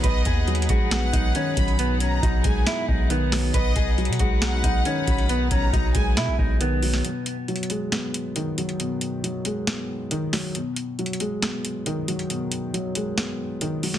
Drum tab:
HH |x-----x-----x-x-x-x-----x-----x-----x-----x--x--|x-----x-----x-----x-----x-----------x-----o-----|x-----x-----x-x-x-x-----x-----x-----x-----x--x--|x-----x-----x-----x-----x-----------x-----o-----|
SD |------------------------o-----------------------|------------------------o-----------------o-----|------------------------o-----------------------|------------------------o--------------------o--|
BD |o-----o-----------o-----------o-----------o-----|------------o-----o-----------o-----------------|o-----o-----------o-----------o-----------o-----|------o-----o-----o-----------o-----------------|

HH |x-----x-----x-x-x-x-----x-----x-----x-----x--x--|x-----x-----x-----x-----x-----------x-----o-----|x-----x-----x-x-x-x-----x-----x-----x-----x--x--|x-----x-----x-----x-----x-----------x-----o-----|
SD |------------------------o-----------------------|------------------------o-----------------o-----|------------------------o-----------------------|------------------------o--------------------o--|
BD |------------------------------------------------|------------------------------------------------|------------------------------------------------|------------------------------------------------|